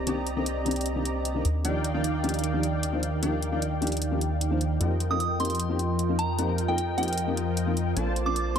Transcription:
Already playing: analog synth bass C2
0.06 felt piano D#3 A#3 C4 D4 G4, analog polysynth C4 G4 D5 D#5 A#5, closed hi-hat
0.27 closed hi-hat
0.36 felt piano D#3 A#3 C4 D4 A4, analog polysynth C4 G4 D5 D#5 A#5
0.46 closed hi-hat
0.65 felt piano D#3 A#3 C4 D4 G4, closed hi-hat
0.71 closed hi-hat
0.76 closed hi-hat
0.81 closed hi-hat
0.86 closed hi-hat
0.95 felt piano D#3 A#3 C4 D4 G4
1.05 closed hi-hat
1.25 closed hi-hat
1.34 felt piano D#3 A#3 C4 D4 A#4
1.45 analog synth bass D#2, closed hi-hat
1.64 analog polysynth D#3 D#4 D5 F5 G5, felt piano F3 A#3 D4 D#4 G4, closed hi-hat
1.84 closed hi-hat
1.94 analog polysynth D#3 D#4 D5 F5 G5, felt piano F3 A#3 D4 D#4 A#4
2.04 closed hi-hat
2.23 felt piano F3 A#3 D4 D#4 G4, closed hi-hat
2.29 closed hi-hat
2.34 closed hi-hat
2.39 closed hi-hat
2.44 closed hi-hat
2.53 felt piano F3 A#3 D4 D#4 G4
2.63 closed hi-hat
2.83 closed hi-hat
2.92 felt piano F3 A#3 D4 D#4 C5
3.03 closed hi-hat
3.22 analog polysynth D#3 D#4 D5 F5 G5, felt piano F3 A#3 D4 D#4 G4, closed hi-hat
3.42 closed hi-hat
3.51 analog polysynth D#3 D#4 D5 F5 G5, felt piano F3 A#3 D4 D#4 A#4
3.62 closed hi-hat
3.81 felt piano F3 A#3 D4 D#4 G4, closed hi-hat
3.87 closed hi-hat
3.92 closed hi-hat
3.97 closed hi-hat
4.02 closed hi-hat
4.11 felt piano F3 A#3 D4 D#4 G4
4.21 closed hi-hat
4.41 closed hi-hat
4.50 felt piano F3 A#3 D4 D#4 C5
4.61 closed hi-hat
4.80 analog synth bass F2, felt piano F3 A#3 C4 D#4 G4, analog polysynth F3 F4 A#4 D#5 G5, closed hi-hat
5.00 closed hi-hat
5.10 felt piano F3 A#3 C4 D#4 A4, analog polysynth F3 F4 A#4 D#5 G5, synth bell D#6
5.20 synth bell D#6, closed hi-hat
5.39 felt piano F3 A#3 C4 D#4 G4, synth bell C6, closed hi-hat
5.45 closed hi-hat
5.50 closed hi-hat
5.55 closed hi-hat
5.60 closed hi-hat
5.69 felt piano F3 A#3 C4 D#4 G4
5.79 closed hi-hat
5.99 closed hi-hat
6.08 felt piano F3 A#3 C4 D#4 A#4
6.19 synth bell A#5, closed hi-hat
6.38 felt piano F3 A#3 C4 D#4 G4, analog polysynth F3 F4 A#4 D#5 G5, closed hi-hat
6.58 closed hi-hat
6.67 felt piano F3 A#3 C4 D#4 A4, analog polysynth F3 F4 A#4 D#5 G5, synth bell G5
6.78 closed hi-hat
6.97 felt piano F3 A#3 C4 D#4 G4, synth bell G5, closed hi-hat
7.03 closed hi-hat
7.08 closed hi-hat
7.13 closed hi-hat
7.18 closed hi-hat
7.27 felt piano F3 A#3 C4 D#4 G4
7.37 closed hi-hat
7.57 closed hi-hat
7.66 felt piano F3 A#3 C4 D#4 A#4
7.77 closed hi-hat
7.96 analog synth bass A#1, felt piano F3 A#3 C4 D4 A4, analog polysynth A#3 F4 C5 D5 A5, closed hi-hat, riser
8.16 closed hi-hat
8.25 felt piano F3 A#3 C4 D4 A#4, analog polysynth A#3 F4 C5 D5 A5, synth bell D6
8.36 synth bell D6, closed hi-hat
8.55 felt piano F3 A#3 C4, synth bell C6, closed hi-hat

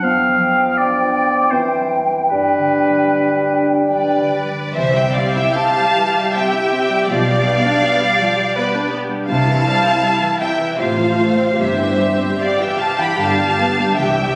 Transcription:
Already playing: harp D4 D5
0.03 harp F2, bassoon F3, clarinet B3, oboe F5, flute section G5
0.28 harp F3
0.53 harp B3
0.77 harp D4, oboe D5
1.02 harp B4
1.26 harp G4
1.51 harp E2, bassoon E3, clarinet C4, oboe C5
1.78 harp G3
2.04 harp C4 G4
2.29 harp G2, bassoon G3, clarinet D4, oboe B4
2.58 harp D3
2.86 harp G3
3.13 harp D4
3.41 harp G4
3.67 harp D4
3.90 harp G3, violin section B4 D5
4.20 harp D3
4.47 harp G3
4.73 double bass section C2, harp C3, cello section C3, viola section E3 G4, violin section C5 E5
4.94 viola section G3, violin section E5 G5
5.14 harp G3, viola section C4, violin section D5 F5
5.33 viola section E4, violin section E5 G5
5.51 harp G4, violin section F5
5.56 viola section C4, violin section A5
5.77 viola section G3
5.94 viola section E3, harp E5
6.15 viola section G3
6.32 viola section C4, harp G4, violin section E5 G5
6.53 viola section E4
6.71 viola section C4, harp E4
6.90 viola section G3
7.08 double bass section B1, cello section B2, harp B2, viola section F3, violin section D5 F5
7.29 viola section G3
7.47 harp G3, viola section B3
7.64 viola section D4
7.83 viola section B3, harp G4
8.02 viola section G3
8.19 viola section F3, harp D5
8.37 viola section G3
8.56 viola section B3, harp G4, violin section B4 D5
8.73 viola section D4
8.91 viola section B3, harp D4
9.10 viola section G3
9.28 double bass section C2, harp C3, viola section C3 E4, cello section C3, violin section F5 A5
9.47 viola section E3
9.64 viola section G3, harp C4
9.82 viola section C4
10.01 viola section G3, harp G4
10.20 viola section E3
10.40 viola section C3, harp E5, violin section E5 G5
10.60 viola section E3
10.78 double bass section A1, harp A2, cello section A2, viola section C3 F4, violin section C5 F5
10.98 viola section F3
11.17 viola section A3, harp F4 C5
11.36 viola section C4
11.56 double bass section G1, cello section G2, harp G2, viola section C3 G4, violin section C5 E5
11.78 viola section E3
11.98 viola section G3, harp C4
12.18 viola section C4
12.37 viola section G3, harp C5
12.41 violin section D5 F5
12.57 viola section E3, violin section G5
12.61 violin section E5
12.78 viola section C3, violin section F5 A5, harp G5
12.98 viola section E3, violin section G5 B5
13.18 double bass section G1, cello section G2, harp G2, viola section D3, violin section F5 A5
13.38 viola section G3
13.57 viola section B3, harp G4 B4
13.78 viola section G3
13.97 double bass section C2, cello section C2, harp C3, viola section E3, violin section E5 G5
14.18 viola section G3

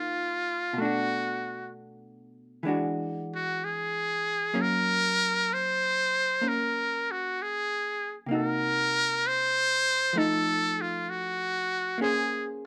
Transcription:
Already playing: hollow-body jazz guitar C#3 A#3 D#4 F4, muted trumpet F4
0.73 hollow-body jazz guitar B2
0.78 hollow-body jazz guitar A3 D4, muted trumpet F#4
0.85 hollow-body jazz guitar F#4
2.63 hollow-body jazz guitar E3 G#3 D4
2.68 hollow-body jazz guitar F#4
3.35 muted trumpet F#4
3.64 muted trumpet G#4
4.53 hollow-body jazz guitar F#3 A#3 C#4
4.61 muted trumpet A#4
5.53 muted trumpet C5
6.42 hollow-body jazz guitar A#3 C#4
6.48 muted trumpet A#4
7.11 muted trumpet F#4
7.42 muted trumpet G#4
8.26 hollow-body jazz guitar C3 A#3
8.31 hollow-body jazz guitar D#4 F#4, muted trumpet A#4
9.27 muted trumpet C5
10.13 hollow-body jazz guitar F3 A3
10.18 hollow-body jazz guitar D#4, muted trumpet A4
10.81 muted trumpet F4
11.09 muted trumpet F#4
11.98 hollow-body jazz guitar A#3 C#4 G#4
12.02 muted trumpet G#4, hollow-body jazz guitar C5

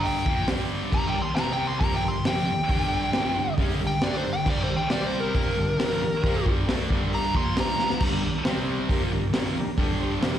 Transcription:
Already playing: distorted electric guitar G2 D3 G3
0.03 lead electric guitar G5, open hi-hat
0.26 distorted electric guitar A#2 F3 A#3, kick
0.48 distorted electric guitar G2 D3 G3, snare, open hi-hat
0.90 distorted electric guitar G2, transistor combo organ D4 G4 A#4, kick, crash
0.94 distorted electric guitar D3 G3, lead electric guitar A#5
1.07 lead electric guitar G5
1.12 transistor combo organ D4 G4 A#4, muted distorted electric guitar stroke
1.22 lead electric guitar C6
1.34 transistor combo organ C4 G4 C5, lead electric guitar A#5, snare, open hi-hat
1.38 distorted electric guitar C3 G3 C4
1.53 lead electric guitar G5
1.57 transistor combo organ C4 G4 A#4
1.67 lead electric guitar C6
1.80 distorted electric guitar A#2 F3 A#3, transistor combo organ D4 G4 A#4, lead electric guitar A#5, kick, open hi-hat
1.94 lead electric guitar G5
2.04 distorted electric guitar G2 D3, transistor combo organ D4 G4 A#4
2.08 lead electric guitar C6
2.25 distorted electric guitar F2 C3 F3, transistor combo organ D4 G4 A#4, lead electric guitar G5, snare, open hi-hat
2.46 transistor combo organ D4 G4 A4
2.52 muted distorted electric guitar stroke
2.68 transistor combo organ D4 G4 A#4, kick, open hi-hat
2.72 distorted electric guitar G2 D3 G3
2.87 transistor combo organ D4 G4 A4
3.12 distorted electric guitar F2 C3, transistor combo organ D4 G4 A#4, snare, open hi-hat
3.16 distorted electric guitar F3
3.34 transistor combo organ D4 G4 C5
3.38 distorted electric guitar G2 D3
3.56 distorted electric guitar C#3 G#3 C#4, transistor combo organ D4 G4 A#4, kick, open hi-hat
3.80 distorted electric guitar G2 D3, transistor combo organ D4 G4 A#4
3.87 lead electric guitar G5
4.00 distorted electric guitar D3 A3 D4, transistor combo organ D4 G4 A#4, lead electric guitar D5, snare, open hi-hat
4.17 lead electric guitar C5
4.23 distorted electric guitar G2 D3, transistor combo organ D4 G4 A#4
4.33 lead electric guitar G5
4.43 distorted electric guitar G2, transistor combo organ D4 G4 A#4, kick, crash
4.47 distorted electric guitar D3 G3, lead electric guitar D5
4.64 transistor combo organ D4 G4, lead electric guitar C5
4.68 transistor combo organ A#4, muted distorted electric guitar stroke
4.77 lead electric guitar G5
4.90 distorted electric guitar C3 G3 C4, transistor combo organ C4 G4 C5, lead electric guitar D5, snare, open hi-hat
5.06 lead electric guitar C5
5.13 transistor combo organ C4 G4 C5
5.20 lead electric guitar A#4
5.35 distorted electric guitar A#2 F3 A#3, transistor combo organ D4 G4 A#4, kick, open hi-hat
5.57 distorted electric guitar G2 D3, transistor combo organ D4 G4 A4
5.77 distorted electric guitar F2 C3 F3, transistor combo organ D4 G4 A4, snare, open hi-hat
6.00 transistor combo organ D4 G4 A#4, muted distorted electric guitar stroke
6.21 transistor combo organ D4 G4 C5, kick, open hi-hat
6.25 distorted electric guitar A#2 F3 A#3
6.45 distorted electric guitar G2 D3 G3, transistor combo organ D4 G4 A#4, kick
6.66 distorted electric guitar D3, transistor combo organ D4 G4 A#4, snare, open hi-hat
6.70 distorted electric guitar A3 D4
6.89 distorted electric guitar G2 D3 G3, transistor combo organ D4 G4 A#4, kick
7.09 transistor combo organ D4 G4 A#4, open hi-hat
7.15 lead electric guitar A#5
7.34 distorted electric guitar A#2 F3 A#3, transistor combo organ D4 G4 A#4, lead electric guitar C6, kick
7.56 distorted electric guitar G2 D3 G3, transistor combo organ D4 G4 C5, snare, open hi-hat
7.60 lead electric guitar A#5
7.76 transistor combo organ D4 G4 A#4, snare
7.90 snare
7.99 distorted electric guitar G2 D3 G3, transistor combo organ D4 G4 A#4, kick, crash
8.20 transistor combo organ D4 G4 A#4
8.25 muted distorted electric guitar stroke
8.44 distorted electric guitar C3 G3 C4, transistor combo organ C4 G4 C5, snare, open hi-hat
8.63 transistor combo organ C4 G4 C5
8.89 distorted electric guitar A#2 F3 A#3, transistor combo organ D4 G4 A#4, kick, open hi-hat
9.12 distorted electric guitar G2 D3, transistor combo organ D4 G4 A#4
9.33 distorted electric guitar F2 C3 F3, transistor combo organ D4 G4 A#4, snare, open hi-hat
9.56 transistor combo organ D4 G4 A#4, muted distorted electric guitar stroke
9.78 distorted electric guitar G2 D3 G3, transistor combo organ D4 G4 A4, kick, open hi-hat
10.00 transistor combo organ D4 G4 C5
10.21 distorted electric guitar F2 C3 F3, transistor combo organ D4 G4 A#4, snare, open hi-hat

